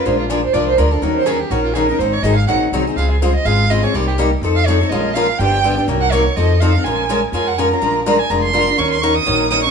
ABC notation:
X:1
M:4/4
L:1/8
Q:"Swing" 1/4=248
K:Bbm
V:1 name="Violin"
c F A c =d c B =A | B c A =G _G F A B | c d e f g z3 | f A c e f2 e d |
=d =G z3 f _d2 | e2 f2 =g3 z | z g d2 e2 f2 | a3 z a g a b- |
b2 b a b c'3 | d' c' d' e'3 e' d' |]
V:2 name="Steel-string acoustic guitar"
[F,A,=DFB] z [F,A,DFB] z [F,A,DFB] z [F,A,DFB] [DFB] | [E,G,DEB] z [E,G,DEB] z [E,G,DEB] z [E,G,DEB] [DEB] | [E,G,CEA] z [E,G,CEA] z [E,G,CEA] z [E,G,CEA] [CEA] | [D,A,CFA] z [D,A,CFA] z [D,A,CFA] z [D,A,CFA] [CFA] |
[C,=G,B,E=G] z [C,G,B,EG] z [F,CE=A] z [F,CEA] [CEA] | [F,A,DFB] z [F,A,DFB] z [=D,F,=B,=D=G] z [D,F,B,DG] [B,DG] | [C,G,B,EB] z [C,G,B,EB] z [F,CE=A] z [F,CEA] [CEA] | [F,A,DFB] z [F,A,DFB] z [F,A,DFB] z [F,A,DFB] [DFB] |
[F,A,=DFB] z [F,A,DFB] z [F,A,DFB] z [F,A,DFB] [DFB] | [E,G,DEB] z [E,G,DEB] z [E,G,DEB] z [E,G,DEB] [DEB] |]
V:3 name="Upright bass" clef=bass
B,,,4 C,,2 =D,,2 | E,,4 B,,,4 | A,,,2 A,,,2 B,,,2 C,,2 | D,,4 A,,,4 |
C,,4 F,,4 | B,,,4 =G,,,4 | C,,4 F,,4 | B,,,4 F,,4 |
B,,,4 F,,,4 | E,,4 B,,,4 |]